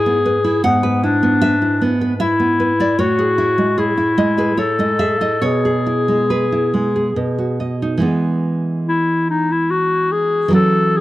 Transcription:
Already playing: G#2 E4 G#4 G#5
0.06 B3
0.26 B4
0.44 E4
0.64 G#2 B3 F#5
0.83 B4
1.03 D4 E4
1.23 B3
1.41 B4 E5
1.62 E4
1.82 B3
2.01 B4
2.20 E4 E5
2.40 B3
2.60 B4
2.80 E4 D5
2.99 A2 F#4 C#5
3.19 G#4
3.38 E4
3.58 G#3
3.78 E4 G#4
3.98 E4
4.18 G#3 D#5
4.38 G#4 B4
4.57 E4 A4 C#5
4.79 G#3 D#5
4.99 G#4 E5
5.21 E4 D#5
5.42 B2 G#4 C#5
5.65 G#4
5.87 E4
6.08 G#3
6.30 G#4 B4
6.52 E4
6.74 G#3
6.96 G#4
7.16 B2
7.38 F#4
7.60 D#5
7.82 D#4
7.98 E3 G#3
8.02 B3
8.89 E4
9.30 D#4
9.52 E4
9.71 F#4
10.12 G#4
10.48 E3 F#3
10.53 C#4 A4
10.97 G#4

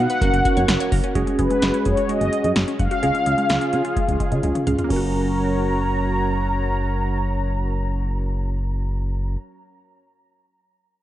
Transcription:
Already playing: B3 D#4 F#4 B4
0.00 F#5
0.10 B4, closed hi-hat
0.21 F#1 A#3 C#4 F#4 A#4, kick, closed hi-hat
0.33 F#1 A#3, closed hi-hat
0.45 F#4, kick, closed hi-hat
0.57 F#2 C#5, closed hi-hat
0.68 F#1 F#5, snare, closed hi-hat
0.80 C#5, closed hi-hat
0.92 F#1 A#4, kick, open hi-hat
1.04 C#4, closed hi-hat
1.15 F#1 G#3 C#4 F#4 G#4, kick, closed hi-hat
1.27 G#3, closed hi-hat
1.39 F#1 G#3 B4, kick, closed hi-hat
1.50 G#3, closed hi-hat
1.62 F#1 G#3, snare, closed hi-hat
1.74 C#4, closed hi-hat
1.85 F#2 G#4 C#5, kick, closed hi-hat
1.97 F#4, closed hi-hat
2.09 G#3 D#5, closed hi-hat
2.21 F#1 G#3, closed hi-hat
2.33 G#3, closed hi-hat
2.44 F#2 G#3, closed hi-hat
2.56 F#1 G#3, snare, closed hi-hat
2.68 C#4, closed hi-hat
2.79 F#1 F5 F#5, kick, closed hi-hat
2.91 F#4, closed hi-hat
3.03 C#2 C#3 G#3 C#4 F4 G#4, closed hi-hat
3.15 G#3, closed hi-hat
3.26 C#2 G#3, closed hi-hat
3.38 G#3, closed hi-hat
3.50 C#2 G#3, snare, closed hi-hat
3.61 C#4, closed hi-hat
3.73 C#3 G#4, closed hi-hat
3.85 F4, closed hi-hat
3.96 G#3, kick, closed hi-hat
4.08 C#2 G#3, closed hi-hat
4.20 G#3, kick, closed hi-hat
4.32 C#3 G#3, closed hi-hat
4.43 C#2 G#3, closed hi-hat, high tom
4.55 C#4, closed hi-hat, mid tom
4.67 C#2 C#4 F4 G#4 F5, closed hi-hat, mid tom
4.79 F4, closed hi-hat, floor tom
4.84 A#3
4.88 F#1 F#3 C#4 F#4 A#4 C#5 A#5, kick, crash
4.96 F#4

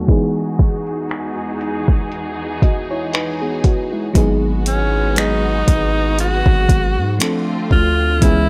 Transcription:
Already playing: F#3 A3 B3 D#4 F#4
0.07 E2 E3 G#3 B3 D#4 G#4, kick, closed hi-hat
0.11 G#4
0.59 kick, closed hi-hat
0.87 closed hi-hat
1.09 finger snap, closed hi-hat
1.61 closed hi-hat
1.88 kick
2.12 closed hi-hat
2.62 F#4 D#5, kick, closed hi-hat
2.91 E4 C#5
3.13 D#4 B4, finger snap, closed hi-hat
3.42 B3 G#4
3.64 F#4, kick, closed hi-hat
3.92 G#3 E4
4.13 G#1 F#3 G#3 B3 D#4 F#4, kick, closed hi-hat
4.18 G#4
4.66 C#4, closed hi-hat
5.15 F#3 G#3 B3 D#4, finger snap, closed hi-hat
5.19 G#4
5.68 G#1, kick, closed hi-hat
6.19 F#4, closed hi-hat
6.46 G#1, kick
6.69 kick, closed hi-hat
6.97 G#2
7.19 D3 F3 A3 C4 D4 F4, finger snap, closed hi-hat
7.23 A4
7.71 D2 F4, kick
8.20 C#2 C#3 E3 G#3 B3 C#4 E4 D#5, kick, closed hi-hat
8.24 G#4

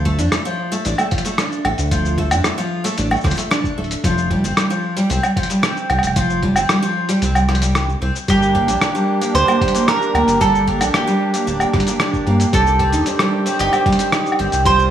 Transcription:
Already playing: D2
0.05 A3, kick, closed hi-hat
0.19 F2 D4, closed hi-hat, cabasa
0.32 A3, cross-stick, closed hi-hat, cabasa
0.45 F3, cabasa
0.72 A3, cabasa
0.85 A1 D4, closed hi-hat, cabasa
0.98 A3, cabasa, low woodblock
1.11 F3, kick, closed hi-hat
1.18 closed hi-hat
1.25 A3, closed hi-hat, cabasa
1.38 D4, cross-stick, closed hi-hat, cabasa
1.52 cabasa
1.65 A1 A3, closed hi-hat, low woodblock
1.78 D2, closed hi-hat, cabasa
1.91 F3, kick, closed hi-hat, cabasa
2.05 cabasa
2.18 A3, kick, closed hi-hat
2.31 F2 D4, closed hi-hat, cabasa, low woodblock
2.44 A3, cross-stick, closed hi-hat, cabasa
2.58 F3, cabasa
2.84 A3, closed hi-hat, cabasa
2.98 A1 D4, closed hi-hat, cabasa
3.11 A3, cabasa, low woodblock
3.16 cabasa
3.21 D2 F3, kick, cross-stick, closed hi-hat, cabasa
3.25 cabasa
3.30 closed hi-hat, cabasa
3.34 A3, closed hi-hat, cabasa
3.39 cabasa
3.51 D4, cross-stick, closed hi-hat, cabasa
3.64 kick, cabasa
3.78 D1 A3
3.84 closed hi-hat
3.91 closed hi-hat, cabasa
4.04 F1 F3, kick, closed hi-hat, cabasa
4.18 cabasa
4.30 G3, kick, closed hi-hat
4.44 G1 C4, cabasa
4.57 G3, cross-stick, closed hi-hat, cabasa
4.70 F3, cabasa
4.97 G3, closed hi-hat, cabasa
5.10 C2 C4, closed hi-hat, cabasa
5.23 G3, cabasa, low woodblock
5.36 F3, kick, closed hi-hat
5.43 closed hi-hat
5.50 G3, closed hi-hat, cabasa
5.63 C4, cross-stick, closed hi-hat, cabasa
5.77 cabasa
5.90 C2 G3, closed hi-hat, low woodblock
5.99 low woodblock
6.03 F1, closed hi-hat, cabasa
6.07 low woodblock
6.16 F3, kick, closed hi-hat, cabasa
6.30 cabasa
6.42 G3, kick, closed hi-hat
6.56 G1 C4, cabasa, low woodblock
6.69 G3, cross-stick, closed hi-hat, cabasa
6.83 F3, cabasa
7.09 G3, closed hi-hat, cabasa
7.22 C2 C4, closed hi-hat, cabasa
7.35 G3, cabasa, low woodblock
7.49 F3, cross-stick, closed hi-hat
7.55 closed hi-hat
7.62 G3, closed hi-hat, cabasa
7.75 G4, cross-stick, closed hi-hat, cabasa
7.89 cabasa
8.02 C2 C4, closed hi-hat
8.16 cabasa
8.28 G1 G3 A#3 D4 G4, kick, closed hi-hat, cabasa
8.41 G4, cabasa
8.54 A#3 G5, kick, closed hi-hat
8.67 A#1 D4, closed hi-hat, cabasa
8.81 A#3 D5, cross-stick, closed hi-hat, cabasa
8.95 G3 G4, cabasa
9.08 D5
9.21 A#3 G5, closed hi-hat, cabasa
9.34 D2 D4 C5 D5, closed hi-hat, cabasa
9.47 A#3 G4, cabasa, low woodblock
9.60 G3 G4, kick, closed hi-hat
9.68 closed hi-hat
9.75 A#3, closed hi-hat, cabasa
9.86 D4 A#4 D5, cross-stick, closed hi-hat, cabasa
10.00 G4, cabasa
10.13 D2 A#3 G5, closed hi-hat, low woodblock
10.27 G1 G5, closed hi-hat, cabasa
10.40 G3 G4 A4, kick, closed hi-hat, cabasa
10.54 G4, cabasa
10.67 A#3 G5, kick, closed hi-hat
10.81 A#1 D4, closed hi-hat, cabasa, low woodblock
10.94 A#3 G4 D5, cross-stick, closed hi-hat, cabasa
11.06 G3 G4, cabasa
11.20 D5
11.34 A#3 G5, closed hi-hat, cabasa
11.46 D1 D4 D5, cabasa
11.60 A#3 G4, cabasa, low woodblock
11.73 G1 G3 G4, kick, cross-stick, closed hi-hat
11.80 closed hi-hat
11.86 A#3 D5, closed hi-hat, cabasa
11.99 D4 D5, cross-stick, closed hi-hat, cabasa
12.13 G4, kick, cabasa
12.26 G2 A#3 G5, closed hi-hat
12.39 G5, closed hi-hat, cabasa
12.52 C2 C3 D#3 G3 C4 G4 A4, kick, closed hi-hat, cabasa
12.67 cabasa
12.79 C4 G5, kick, closed hi-hat
12.92 D#2 D4 D#4, closed hi-hat, cabasa
13.06 C4 D5, closed hi-hat, cabasa
13.19 G3 G4, cross-stick, cabasa
13.32 D5
13.45 C4 G5, closed hi-hat, cabasa
13.59 G1 D#4 G4 D5, closed hi-hat, cabasa
13.73 C4 G4, cabasa, low woodblock
13.85 G3 G4, kick, closed hi-hat
13.93 closed hi-hat
13.98 C4 D5, closed hi-hat, cabasa
14.12 D#4 D5, cross-stick, closed hi-hat, cabasa
14.26 G4, cabasa
14.32 low woodblock
14.39 G1 C4 G5, closed hi-hat
14.52 C2 G5, closed hi-hat, cabasa
14.65 G3 F4 G4 C5, kick, closed hi-hat, cabasa
14.78 G4, cabasa

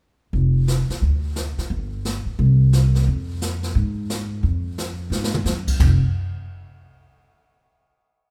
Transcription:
0.33 F1, brush sweep, kick
0.68 snare, hi-hat pedal
0.89 muted upright bass stroke, snare
1.01 D2, brush sweep, kick
1.36 snare, hi-hat pedal
1.58 muted upright bass stroke, snare
1.70 G1, brush sweep, kick
2.05 snare, hi-hat pedal
2.25 muted upright bass stroke
2.39 C2, brush sweep, kick
2.73 snare, hi-hat pedal
2.95 snare
3.07 F2, brush sweep, kick
3.42 snare, hi-hat pedal
3.63 snare
3.75 G#2, brush sweep, kick
4.10 snare, hi-hat pedal
4.43 F2, brush sweep, kick
4.78 snare, hi-hat pedal
5.10 G#2, snare
5.24 snare
5.34 mid tom
5.44 F#2, snare, hi-hat pedal
5.67 kick, crash
5.80 F1, kick, floor tom, crash

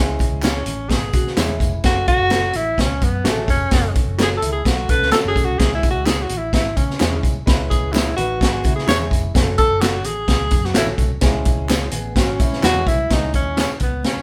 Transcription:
Already playing: C#2 G#3 C#4 E4 G#4
0.19 kick, closed hi-hat, tambourine, high conga
0.31 C#2
0.43 C#4 E4 G#4 C#5, snare, clap, closed hi-hat, tambourine
0.66 A1, closed hi-hat, tambourine, muted conga, low conga
0.89 G#1 B3 G#4, kick, snare, closed hi-hat, tambourine
1.13 C#3 F#4, kick, closed hi-hat, tambourine, muted conga, high conga
1.27 snare
1.36 E2 G#3 C#4 E4 G#4 C#5, snare, clap, closed hi-hat, tambourine
1.49 high conga, low conga
1.60 F1, kick, closed hi-hat, tambourine
1.84 F#1 A3 C#4 F#4 A4, kick, snare, closed hi-hat
2.07 F#4, kick, closed hi-hat, tambourine, high conga
2.19 F#1
2.30 F#4 A4 C#5, snare, clap, closed hi-hat, tambourine
2.53 A1 E4, closed hi-hat, tambourine, low conga
2.77 C#2 C#4, kick, snare, closed hi-hat, tambourine, muted conga
3.01 F#2 B3, kick, closed hi-hat, tambourine, muted conga, high conga
3.24 A1 A3 C#4 F#4 G#4 A4 C#5, snare, clap, closed hi-hat, tambourine
3.36 high conga, low conga
3.48 F1 C#4, kick, closed hi-hat, tambourine
3.71 F#1 A3 C#4 F#4 A4, kick, snare, closed hi-hat, tambourine
3.95 kick, closed hi-hat, tambourine, high conga
4.06 F#1
4.18 F#4 A4 C#5, snare, clap, closed hi-hat, tambourine, muted conga
4.23 G#4
4.37 A4
4.42 C#2 G#3 E4, closed hi-hat, muted conga, low conga
4.52 G#4
4.65 B1 A3 F#4, kick, snare, closed hi-hat, tambourine
4.89 C#4 A4 B4, kick, closed hi-hat, tambourine, high conga
5.00 C#2, snare
5.12 A3 C#4 F#4 A4 C#5, snare, clap, closed hi-hat, tambourine
5.24 F#1, high conga, low conga
5.28 G#4
5.35 B1, kick, closed hi-hat, tambourine, muted conga
5.45 C2 F#4
5.59 C#2 G#3 C#4 E4 G#4, kick, snare, closed hi-hat
5.75 E4
5.83 kick, closed hi-hat, tambourine, muted conga, high conga
5.90 F#4
5.94 C#2
6.05 E4 G#4 C#5, snare, clap, closed hi-hat, tambourine, muted conga
6.22 F#4
6.29 A1, closed hi-hat, tambourine, low conga
6.37 E4
6.53 G#1 E4, kick, snare, closed hi-hat, tambourine, muted conga
6.76 C#3 C#4, kick, closed hi-hat, tambourine, high conga
6.90 snare
7.00 E2 G#3 C#4 E4 G#4 C#5, snare, clap, closed hi-hat, tambourine
7.12 high conga, low conga
7.23 C2, kick, closed hi-hat, tambourine
7.46 C#2 G#3 C#4 E4 B4, kick, snare, closed hi-hat
7.70 G#4, kick, closed hi-hat, tambourine, high conga
7.83 C#2
7.92 E4 G#4 C#5, snare, clap, closed hi-hat, tambourine, muted conga
8.16 A1 D#4 F#4 B4, closed hi-hat, low conga
8.41 G#1 B3 G#4, kick, snare, closed hi-hat, tambourine, muted conga
8.64 C#3 G#3 E4, kick, closed hi-hat, tambourine, high conga
8.76 G#4, snare
8.87 E2 G#3 C#4 E4 G#4 C#5, snare, clap, closed hi-hat, tambourine
8.99 high conga, low conga
9.11 F1, kick, closed hi-hat, tambourine, muted conga
9.34 F#1 A3 C#4 F#4 G#4, kick, snare, closed hi-hat, tambourine
9.41 A4
9.58 A4, kick, closed hi-hat, tambourine, muted conga, high conga
9.69 F#1
9.81 F#4 A4 C#5, snare, clap, closed hi-hat, tambourine
10.04 A1 G#4, closed hi-hat, low conga
10.28 C#2, kick, snare, closed hi-hat, tambourine
10.51 F#2, kick, closed hi-hat, tambourine, high conga
10.64 F#4, snare
10.74 A1 A3 C#4 E4 F#4 A4 C#5, snare, clap, closed hi-hat, tambourine
10.87 high conga, low conga
10.98 C2, kick, closed hi-hat, tambourine, muted conga
11.21 C#2 G#3 C#4 E4 G#4, kick, snare, closed hi-hat, tambourine
11.45 kick, closed hi-hat, tambourine, muted conga, high conga
11.57 C#2
11.69 E4 G#4 C#5, snare, clap, closed hi-hat, tambourine, muted conga
11.91 A1 B3 G#4, closed hi-hat, tambourine, low conga
12.16 G#1 C#4 F#4, kick, snare, closed hi-hat, tambourine
12.39 C#3 G#3 E4, kick, closed hi-hat, tambourine, muted conga, high conga
12.53 snare
12.63 E2 G#3 C#4 E4 F#4 G#4 B4 C#5, snare, clap, closed hi-hat, tambourine
12.75 high conga, low conga
12.86 C2 E4, kick, closed hi-hat, tambourine, muted conga
13.10 C#2 G#3 C#4 D#4 E4 G#4, kick, snare, closed hi-hat
13.33 D#2 C#4, kick, closed hi-hat, tambourine, muted conga, high conga
13.56 E4 G#4 C#5, snare, clap, closed hi-hat, tambourine, muted conga
13.61 C#4
13.80 C#2 B3, kick, closed hi-hat, muted conga, low conga
13.92 C#2
14.03 C#4, snare, closed hi-hat, tambourine, muted conga
14.16 muted fingered electric bass stroke

